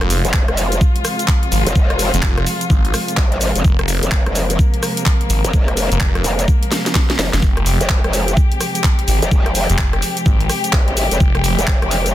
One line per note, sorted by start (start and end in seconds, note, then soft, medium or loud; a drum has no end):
0.00 0.22 F1 medium
0.00 12.14 C3 medium
0.00 12.14 F3 medium
0.00 12.14 G#3 medium
0.00 3.64 F4 medium
0.00 cross-stick medium
0.00 closed hi-hat soft
0.10 open hi-hat loud
0.10 shaker medium
0.25 0.46 F1 medium
0.25 closed hi-hat medium
0.25 shaker soft
0.33 kick loud
0.33 clap loud
0.33 shaker soft
0.48 0.80 F1 loud
0.48 cross-stick medium
0.48 closed hi-hat soft
0.57 open hi-hat loud
0.57 shaker medium
0.72 closed hi-hat medium
0.72 shaker soft
0.81 kick loud
0.81 shaker soft
0.96 closed hi-hat soft
1.05 cross-stick medium
1.05 open hi-hat loud
1.05 shaker medium
1.19 closed hi-hat medium
1.19 shaker soft
1.28 kick loud
1.28 clap loud
1.28 shaker soft
1.43 closed hi-hat medium
1.52 1.64 G#1 loud
1.52 open hi-hat loud
1.52 shaker medium
1.66 1.74 F1 loud
1.66 closed hi-hat medium
1.66 shaker soft
1.76 2.11 F1 medium
1.76 kick loud
1.76 shaker soft
1.90 cross-stick medium
1.90 closed hi-hat soft
1.99 open hi-hat loud
1.99 shaker medium
2.14 2.45 F1 loud
2.14 closed hi-hat medium
2.14 shaker soft
2.22 kick loud
2.22 clap loud
2.22 shaker soft
2.38 cross-stick medium
2.38 closed hi-hat soft
2.46 open hi-hat loud
2.46 shaker medium
2.61 closed hi-hat medium
2.61 shaker soft
2.70 2.92 G#1 loud
2.70 kick loud
2.70 shaker soft
2.85 closed hi-hat soft
2.94 cross-stick medium
2.94 open hi-hat loud
2.94 shaker medium
3.08 closed hi-hat medium
3.08 shaker soft
3.17 3.53 G#1 loud
3.17 kick loud
3.17 clap loud
3.17 shaker soft
3.32 closed hi-hat medium
3.41 open hi-hat loud
3.41 shaker medium
3.56 3.63 F1 loud
3.56 closed hi-hat medium
3.56 shaker soft
3.65 4.00 F1 medium
3.65 7.42 A#3 medium
3.65 kick loud
3.65 shaker soft
3.79 cross-stick medium
3.79 closed hi-hat soft
3.88 open hi-hat loud
3.88 shaker medium
4.03 4.24 F1 loud
4.03 closed hi-hat medium
4.03 shaker soft
4.11 kick loud
4.11 clap loud
4.11 shaker soft
4.26 4.58 F1 loud
4.26 cross-stick medium
4.26 closed hi-hat soft
4.35 open hi-hat loud
4.35 shaker medium
4.50 closed hi-hat medium
4.50 shaker soft
4.59 kick loud
4.59 shaker soft
4.74 closed hi-hat medium
4.83 cross-stick medium
4.83 open hi-hat loud
4.83 shaker medium
4.97 closed hi-hat medium
4.97 shaker soft
5.06 kick loud
5.06 clap loud
5.06 shaker soft
5.21 closed hi-hat medium
5.30 5.42 G#1 loud
5.30 open hi-hat loud
5.30 shaker medium
5.44 5.52 F1 loud
5.44 closed hi-hat medium
5.44 shaker soft
5.53 5.89 F1 loud
5.53 kick loud
5.53 shaker soft
5.68 cross-stick medium
5.68 closed hi-hat soft
5.77 open hi-hat loud
5.77 shaker medium
5.92 6.23 F1 loud
5.92 closed hi-hat medium
5.92 shaker soft
6.00 kick loud
6.00 clap loud
6.00 shaker soft
6.15 cross-stick medium
6.15 closed hi-hat soft
6.24 6.46 F1 loud
6.24 open hi-hat loud
6.24 shaker medium
6.39 closed hi-hat medium
6.39 shaker soft
6.48 kick loud
6.48 shaker soft
6.63 closed hi-hat medium
6.72 snare medium
6.72 open hi-hat loud
6.72 shaker medium
6.86 snare medium
6.86 closed hi-hat medium
6.86 shaker soft
6.95 kick loud
6.95 snare medium
6.95 clap loud
6.95 shaker soft
7.10 snare medium
7.10 closed hi-hat medium
7.19 7.31 F1 loud
7.19 snare loud
7.19 open hi-hat loud
7.19 shaker medium
7.33 7.41 F1 loud
7.33 snare medium
7.33 closed hi-hat medium
7.33 shaker soft
7.42 7.78 F1 medium
7.42 12.14 G4 medium
7.42 kick loud
7.42 shaker soft
7.57 cross-stick medium
7.57 closed hi-hat soft
7.66 open hi-hat loud
7.66 shaker medium
7.81 8.02 F1 loud
7.81 closed hi-hat medium
7.81 shaker soft
7.89 kick loud
7.89 clap loud
7.89 shaker soft
8.04 8.36 F1 loud
8.04 cross-stick medium
8.04 closed hi-hat soft
8.13 open hi-hat loud
8.13 shaker medium
8.28 closed hi-hat medium
8.28 shaker soft
8.37 kick loud
8.37 shaker soft
8.52 closed hi-hat medium
8.61 cross-stick medium
8.61 open hi-hat loud
8.61 shaker medium
8.75 closed hi-hat medium
8.75 shaker soft
8.84 kick loud
8.84 clap loud
8.84 shaker soft
8.99 closed hi-hat medium
9.08 9.20 G#1 loud
9.08 open hi-hat loud
9.08 shaker medium
9.22 9.30 F1 loud
9.22 closed hi-hat medium
9.22 shaker soft
9.31 9.67 F1 loud
9.31 kick loud
9.31 shaker soft
9.46 cross-stick medium
9.46 closed hi-hat soft
9.55 open hi-hat loud
9.55 shaker medium
9.70 10.01 F1 loud
9.70 closed hi-hat medium
9.70 shaker soft
9.78 kick loud
9.78 clap loud
9.78 shaker soft
9.93 cross-stick medium
9.93 closed hi-hat soft
10.02 open hi-hat loud
10.02 shaker medium
10.17 closed hi-hat medium
10.17 shaker soft
10.26 10.48 G#1 loud
10.26 kick loud
10.26 shaker soft
10.40 closed hi-hat medium
10.49 cross-stick medium
10.49 open hi-hat loud
10.49 shaker medium
10.64 closed hi-hat medium
10.64 shaker soft
10.73 11.09 G#1 loud
10.73 kick loud
10.73 clap loud
10.73 shaker soft
10.88 closed hi-hat medium
10.97 open hi-hat loud
10.97 shaker medium
11.11 11.19 F1 loud
11.11 closed hi-hat medium
11.11 shaker soft
11.20 11.56 F1 medium
11.20 kick loud
11.20 shaker soft
11.35 cross-stick medium
11.35 closed hi-hat soft
11.44 open hi-hat loud
11.44 shaker medium
11.59 11.80 F1 medium
11.59 closed hi-hat medium
11.59 shaker soft
11.67 kick loud
11.67 clap loud
11.82 12.13 F1 loud
11.82 cross-stick medium
11.82 closed hi-hat soft
11.91 open hi-hat loud
11.91 shaker medium
12.06 closed hi-hat medium
12.06 shaker soft